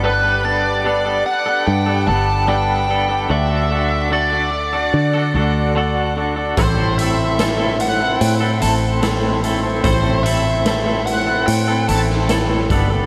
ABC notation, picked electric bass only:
X:1
M:4/4
L:1/8
Q:1/4=74
K:Ador
V:1 name="Picked electric bass" clef=bass
G,,,3 z G,, G,,,3 | D,,4 D, D,,3 | A,,,4 A,, A,,,3 | A,,,4 A,, A,,,2 G,,, |]